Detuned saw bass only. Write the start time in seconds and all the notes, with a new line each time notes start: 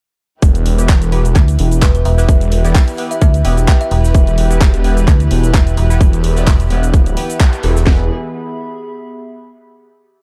0.42 E1
0.66 E1
0.89 E1
1.02 E1
1.59 E1
2.29 E1
2.52 E1
3.45 E1
4.15 E1
4.38 E1
4.61 E1
4.74 E1
5.31 E1
6.01 E1
6.24 E1
6.70 E1
7.63 E1
7.87 E1